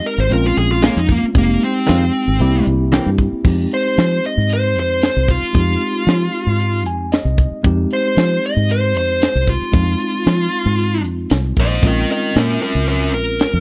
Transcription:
Already playing: tine electric piano G#3 C4 D#4 G4
0.04 lead electric guitar A#4, closed hi-hat
0.18 fingered electric bass G#1, lead electric guitar C5
0.29 fingered electric bass A#1, tine electric piano G#3 C4 C#4 F4, lead electric guitar A#4, closed hi-hat
0.46 lead electric guitar F4
0.56 fingered electric bass A#1, lead electric guitar G#4, closed hi-hat
0.72 lead electric guitar F4
0.82 clean electric guitar G#3 C#4 F4, lead electric guitar A#3, snare, closed hi-hat
0.97 fingered electric bass F2, lead electric guitar D#4
1.09 lead electric guitar A#3, kick, closed hi-hat
1.23 muted fingered electric bass stroke
1.35 fingered electric bass F1, tine electric piano G#3 C4 D#4 G4, lead electric guitar A#3, kick, closed hi-hat
1.62 lead electric guitar C4, closed hi-hat
1.87 fingered electric bass F2, clean electric guitar D#3 G#3 C4 F4, snare, closed hi-hat
2.14 closed hi-hat
2.28 fingered electric bass G#1
2.39 fingered electric bass C2, tine electric piano A#3 C4 E4 G4, closed hi-hat
2.66 fingered electric bass C2, closed hi-hat
2.92 clean electric guitar E3 A#3 C4 G4, snare, closed hi-hat
3.06 fingered electric bass G2
3.18 kick, closed hi-hat
3.32 muted fingered electric bass stroke
3.44 fingered electric bass F2, tine electric piano G#3 C4 D#4 G4, kick, crash
3.72 lead electric guitar C5, closed hi-hat
3.97 fingered electric bass F3, snare, closed hi-hat
4.24 lead electric guitar D#5, closed hi-hat
4.37 fingered electric bass G#2
4.49 closed hi-hat
4.53 lead electric guitar C5
4.76 fingered electric bass F2, lead electric guitar C5, closed hi-hat
5.02 snare, closed hi-hat
5.16 fingered electric bass C2
5.28 lead electric guitar F4, kick, closed hi-hat
5.42 muted fingered electric bass stroke
5.53 fingered electric bass F2, tine electric piano G#3 C4 D#4 G4, kick, closed hi-hat
5.81 closed hi-hat
6.07 fingered electric bass F3, snare, closed hi-hat
6.34 closed hi-hat
6.47 fingered electric bass G#2
6.59 closed hi-hat
6.86 fingered electric bass F2, tine electric piano G#5, closed hi-hat
7.12 tine electric piano D#5, snare, closed hi-hat
7.25 fingered electric bass C2
7.38 kick, closed hi-hat
7.51 muted fingered electric bass stroke
7.63 fingered electric bass F2, tine electric piano G#3 C4 D#4 G4, kick, closed hi-hat
7.91 lead electric guitar C5, closed hi-hat
8.17 fingered electric bass F3, snare, closed hi-hat
8.43 lead electric guitar D#5, closed hi-hat
8.56 fingered electric bass G#2
8.69 lead electric guitar C5, closed hi-hat
8.95 fingered electric bass F2, lead electric guitar C5, closed hi-hat
9.22 snare, closed hi-hat
9.35 fingered electric bass C2
9.47 lead electric guitar F4, kick, closed hi-hat
9.61 muted fingered electric bass stroke
9.72 fingered electric bass F2, tine electric piano G#3 C4 D#4 F4, kick, closed hi-hat
10.00 closed hi-hat
10.25 fingered electric bass F3, snare, closed hi-hat
10.52 closed hi-hat
10.66 fingered electric bass G#2
10.78 closed hi-hat
11.04 fingered electric bass F2, closed hi-hat
11.30 fingered electric bass C2, snare, closed hi-hat
11.57 fingered electric bass A#1, lead electric guitar C5 D#5, kick, closed hi-hat
11.82 fingered electric bass A#1, tine electric piano G#3 C4 C#4 F4, kick, closed hi-hat
11.87 lead electric guitar A#4 D#5
12.09 lead electric guitar A#4 D#5, closed hi-hat
12.35 fingered electric bass A#2, lead electric guitar C#4 A#4, snare, closed hi-hat
12.62 lead electric guitar C#4 A#4, closed hi-hat
12.75 fingered electric bass C#2
12.87 lead electric guitar C#4 A#4, closed hi-hat
13.14 fingered electric bass A#1, lead electric guitar A#4, closed hi-hat
13.39 snare, closed hi-hat
13.53 fingered electric bass F2

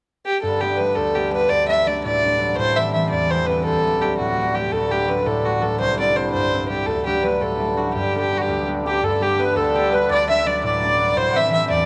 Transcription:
0.25 fiddle G4
0.42 harp G2, harmonium G2 D3, fiddle A4
0.61 harp G3 A3 B3, fiddle G4
0.77 harp G3 A3 B3, fiddle B4
0.95 harp D2, fiddle A4
1.15 harp G3 A3 B3, fiddle G4
1.32 harp G3 A3 B3, fiddle B4
1.49 harp D2, fiddle D5
1.68 harp F#3 A3 D4, fiddle E5
1.86 harp F#3 A3 D4, fiddle D5
2.04 harp A2, fiddle D5
2.23 harp F#3 A3 D4
2.39 harp F#3 A3 D4
2.57 harp A2, fiddle C5
2.76 harp E3 A3 C4, fiddle E5
2.93 harp E3 A3 C4, fiddle E5
3.10 harp E2, fiddle D5
3.31 harp E3 A3 C4, fiddle C5
3.46 harp E3 A3 C4, fiddle B4
3.64 harp D2, fiddle A4
3.85 harp F#3 A3 D4
4.01 harp F#3 A3 D4, fiddle G4
4.18 harp A2, fiddle F#4
4.38 harp F#3 A3 D4
4.54 harp F#3 A3 D4, fiddle G4
4.72 harp D2, harmonium G2 D3, fiddle A4
4.91 harp F#3 A3 D4, fiddle G4
5.08 harp F#3 A3 D4, fiddle B4
5.26 harp A2, fiddle A4
5.45 harp F#3 A3 D4, fiddle F#4
5.62 harp F#3 A3 D4, fiddle A4
5.80 harp C2, fiddle C5
5.98 harp G3 C4 E4, fiddle D5
6.16 harp G3 C4 E4, fiddle C5
6.33 harp G2, fiddle C5
6.53 harp G3 C4 E4
6.69 harp G3 C4 E4, fiddle G4
6.86 harp D2, fiddle A4
7.06 harp F#3 A3 D4, fiddle G4
7.23 harp F#3 A3 D4, fiddle B4
7.41 harp A2, fiddle A4
7.60 harp F#3 A3 D4
7.77 harp F#3 A3 D4, fiddle F#4
7.93 harp G2, fiddle G4
8.15 harp G3 B3 D4, fiddle G4 A4
8.32 harp G3 B3 D4
8.38 fiddle F#4 G4
8.48 harp D2
8.67 harp G3 B3 D4
8.84 harp G3 B3 D4, accordion G4, fiddle G4
9.01 harmonium G2 D3, harp G2, accordion A4, fiddle A4
9.21 harp G3 A3 B3, accordion G4, fiddle G4
9.38 harp G3 A3 B3, accordion B4, fiddle B4
9.55 harp D2, accordion A4, fiddle A4
9.74 harp G3 A3 B3, fiddle G4
9.91 harp G3 A3 B3, fiddle B4, accordion B4
10.09 harp D2, accordion D5, fiddle D5
10.27 harp F#3 A3 D4, fiddle E5, accordion E5
10.46 harp F#3 A3 D4, fiddle D5, accordion D5
10.63 harp A2, fiddle D5, accordion D5
10.79 harp F#3 A3
10.85 harp D4
10.99 harp F#3 A3 D4
11.16 harp A2, fiddle C5, accordion C5
11.32 harp E3 A3 C4, accordion F#5
11.36 accordion E5, fiddle E5
11.50 harp E3 A3, fiddle E5
11.54 harp C4, accordion E5
11.70 harp E2, accordion D5, fiddle D5

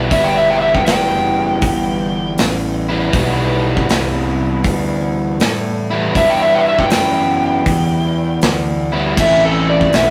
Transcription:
Already playing: overdriven electric guitar G3 B3 E4
0.10 fingered electric bass G1, overdriven electric guitar E3 G3 B3 E4, electric slide guitar E5, kick, open hi-hat
0.24 electric slide guitar G5
0.37 electric slide guitar E5
0.50 electric slide guitar G5
0.62 electric slide guitar E5
0.75 electric slide guitar G5, kick
0.86 fingered electric bass F#1, electric slide guitar G5, snare, open hi-hat
1.62 fingered electric bass G1, kick, open hi-hat
2.38 fingered electric bass A1, snare, open hi-hat
2.89 overdriven electric guitar E3 G3 B3 E4
3.12 fingered electric bass B1, overdriven electric guitar E3 G3 B3 E4, kick, open hi-hat
3.77 kick
3.89 fingered electric bass C2, snare, open hi-hat
4.64 fingered electric bass D2, kick, open hi-hat
5.40 fingered electric bass A2, snare, open hi-hat
5.91 overdriven electric guitar E3 G3 B3 E4
6.14 fingered electric bass G2, overdriven electric guitar E3 G3 B3 E4, electric slide guitar E5, kick, open hi-hat
6.30 electric slide guitar G5
6.42 electric slide guitar E5
6.55 electric slide guitar G5
6.68 electric slide guitar E5
6.79 electric slide guitar G5, kick
6.90 fingered electric bass F#2, electric slide guitar G5, snare, open hi-hat
7.66 fingered electric bass E2, kick, open hi-hat
8.42 fingered electric bass D2, snare, open hi-hat
8.92 overdriven electric guitar E3 G3 B3 E4
9.17 fingered electric bass A1, overdriven electric guitar A2 E3 A3 C4 E4, electric slide guitar E5, kick, crash
9.45 electric slide guitar A4
9.69 electric slide guitar D5
9.81 kick
9.93 fingered electric bass B1, electric slide guitar E5, snare, open hi-hat

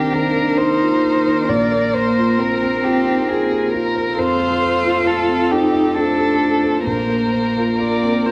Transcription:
Already playing: upright piano C2 C4 D#4 A#4 C5, ambient pad D#3 A#3 C5, cello D4, violin G4, viola A#4
0.14 upright piano D#3, violin A#4
0.36 upright piano D4
0.58 cello D#4, upright piano D#4, violin C5
0.81 upright piano F4
1.05 upright piano D#4
1.26 upright piano C5
1.49 upright piano A#1, cello A#3, ambient pad F4, violin D5
1.72 upright piano A#4
1.94 violin C5, upright piano C5
2.17 upright piano F4
2.38 cello C4, violin A#4, upright piano A#4
2.63 upright piano C4
2.84 upright piano F4, violin G4
3.28 upright piano F4, violin G#4
3.51 upright piano G4
3.72 upright piano F4, violin A#4
3.95 upright piano C5
4.16 upright piano F2, ambient pad A3 C5, cello F4, viola A4, violin C5
4.40 upright piano A4
4.62 upright piano C5
4.84 upright piano F4
5.06 upright piano A4, violin A4
5.29 upright piano C4
5.50 cello D#4, upright piano F4, violin G4
5.72 upright piano D#4
5.95 cello D4, upright piano F4, violin A4
6.18 upright piano G4
6.41 upright piano F4
6.63 upright piano C5
6.86 upright piano A#1, ambient pad A#3 F4, cello A#3, violin A#4, viola C5
7.10 upright piano A#4
7.33 upright piano C5
7.56 upright piano F4
7.79 upright piano A#4, viola D5
8.02 upright piano C4
8.26 upright piano F4, viola C5

